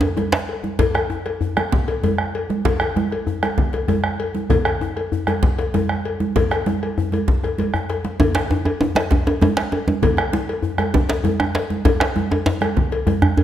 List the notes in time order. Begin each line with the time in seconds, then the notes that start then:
0.01 cowbell, djembe slap, djembe tone
0.17 bombo rim, cowbell, djembe slap, djembe tone, high conga
0.32 bombo rim, djembe slap
0.48 cowbell, djembe slap
0.63 djembe tone, high conga
0.79 bombo low, cowbell, low conga, djembe bass
0.94 bombo rim, cowbell, djembe slap, high conga
1.10 djembe tone
1.25 bombo rim, cowbell, djembe slap, high conga
1.41 djembe bass
1.57 bombo rim, cowbell, djembe slap, djembe tone, high conga
1.72 bombo rim, bombo low, high conga, low conga
1.88 cowbell, djembe slap
2.03 cowbell, djembe tone, high conga, djembe bass
2.18 bombo rim
2.35 cowbell, high conga
2.50 djembe tone, high conga
2.65 bombo low, cowbell, djembe bass, low conga
2.80 bombo rim, cowbell, djembe slap, high conga
2.96 djembe tone, high conga
3.11 bombo rim, cowbell, djembe slap, high conga
3.27 djembe bass
3.43 bombo rim, cowbell, djembe slap, high conga, djembe tone
3.58 bombo rim, bombo low, high conga, low conga
3.73 cowbell, djembe slap
3.88 bombo rim, cowbell, djembe tone, high conga, djembe bass
4.04 bombo rim
4.20 cowbell, high conga
4.35 high conga, djembe tone
4.50 bombo low, cowbell, low conga, djembe bass
4.65 bombo rim, cowbell, djembe slap, high conga
4.81 djembe tone
4.96 bombo rim, cowbell, djembe slap, high conga
5.12 djembe bass
5.27 bombo rim, cowbell, djembe slap, high conga, djembe tone
5.43 bombo rim, bombo low, high conga, low conga
5.59 cowbell, djembe slap
5.74 bombo rim, cowbell, high conga, djembe tone, djembe bass
5.89 bombo rim
6.05 cowbell, high conga
6.20 djembe tone, high conga
6.36 bombo low, cowbell, low conga, djembe bass
6.51 bombo rim, cowbell, djembe slap
6.66 bombo rim, high conga, djembe tone
6.83 bombo rim, cowbell
6.98 bombo rim, djembe bass
7.12 cowbell, high conga, djembe tone
7.28 bombo low, high conga, low conga
7.43 bombo rim, cowbell, high conga, djembe bass
7.58 cowbell, high conga, djembe bass
7.74 bombo rim, high conga, djembe bass
7.89 bombo rim, cowbell, djembe slap
8.05 djembe slap, high conga
8.20 bombo low, cowbell, djembe tone, djembe bass, low conga
8.35 bombo rim, cowbell, djembe slap, high conga
8.51 djembe tone
8.65 bombo rim, cowbell, djembe slap, djembe tone, high conga
8.81 djembe tone, djembe bass
8.95 bombo rim, cowbell, djembe slap, high conga, djembe tone
9.11 bombo rim, bombo low, high conga, djembe tone, low conga
9.27 cowbell, djembe slap, djembe tone
9.41 bombo rim, cowbell, high conga, djembe tone, djembe bass
9.57 bombo rim, djembe slap
9.72 cowbell, high conga, djembe tone
9.88 djembe tone, high conga
10.02 bombo low, cowbell, djembe bass, low conga
10.17 bombo rim, cowbell, djembe slap, high conga
10.33 djembe tone, high conga
10.48 bombo rim, cowbell, djembe slap, high conga
10.62 djembe bass
10.78 bombo rim, cowbell, djembe slap, djembe tone, high conga
10.94 bombo rim, bombo low, djembe tone, high conga, low conga
11.09 cowbell, djembe slap
11.24 bombo rim, cowbell, djembe tone, high conga, djembe bass
11.40 bombo rim, djembe tone
11.55 cowbell, djembe slap, high conga
11.70 high conga, djembe tone
11.85 bombo low, cowbell, djembe tone, low conga, djembe bass
12.00 bombo rim, cowbell, djembe slap, high conga
12.16 high conga, djembe tone
12.31 bombo rim, cowbell, djembe slap, high conga, djembe tone
12.46 djembe slap, djembe bass
12.61 bombo rim, cowbell, djembe slap, high conga, djembe tone
12.77 bombo rim, bombo low, high conga, low conga
12.92 cowbell, djembe slap
13.07 bombo rim, cowbell, djembe tone, high conga, djembe bass
13.22 bombo rim, djembe bass
13.37 cowbell, high conga, djembe bass